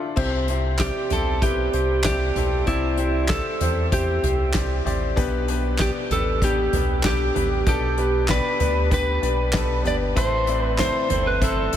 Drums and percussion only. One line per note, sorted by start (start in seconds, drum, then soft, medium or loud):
0.17 kick loud
0.17 crash medium
0.48 closed hi-hat medium
0.79 kick medium
0.79 snare medium
0.79 clap medium
0.79 closed hi-hat medium
1.10 closed hi-hat medium
1.10 floor tom medium
1.42 kick loud
1.42 closed hi-hat medium
1.73 closed hi-hat medium
2.04 kick loud
2.04 snare loud
2.04 clap medium
2.04 closed hi-hat medium
2.36 closed hi-hat medium
2.36 floor tom medium
2.67 kick medium
2.67 closed hi-hat medium
2.97 closed hi-hat medium
3.28 kick medium
3.28 snare medium
3.28 clap medium
3.28 closed hi-hat medium
3.61 closed hi-hat medium
3.61 floor tom medium
3.92 kick loud
3.92 closed hi-hat medium
4.24 closed hi-hat medium
4.24 floor tom medium
4.54 kick medium
4.54 snare loud
4.54 clap medium
4.54 closed hi-hat medium
4.86 closed hi-hat medium
4.86 floor tom medium
5.17 kick loud
5.17 closed hi-hat medium
5.48 closed hi-hat medium
5.78 kick medium
5.78 snare medium
5.78 clap medium
5.78 closed hi-hat medium
6.11 closed hi-hat medium
6.11 floor tom medium
6.42 kick loud
6.42 closed hi-hat medium
6.73 closed hi-hat medium
6.73 floor tom medium
7.03 kick medium
7.03 snare loud
7.03 clap medium
7.03 closed hi-hat medium
7.35 closed hi-hat medium
7.35 floor tom medium
7.67 kick loud
7.67 closed hi-hat medium
7.98 closed hi-hat medium
8.28 kick medium
8.28 snare loud
8.28 clap medium
8.28 closed hi-hat medium
8.60 closed hi-hat medium
8.60 floor tom medium
8.91 kick loud
8.91 closed hi-hat medium
9.23 closed hi-hat medium
9.53 kick medium
9.53 snare loud
9.53 clap medium
9.53 closed hi-hat medium
9.85 closed hi-hat medium
9.85 floor tom medium
10.16 kick loud
10.16 closed hi-hat medium
10.47 closed hi-hat medium
10.78 kick medium
10.78 snare medium
10.78 clap medium
10.78 closed hi-hat medium
11.10 closed hi-hat medium
11.10 floor tom medium
11.42 kick loud
11.42 closed hi-hat medium
11.73 closed hi-hat medium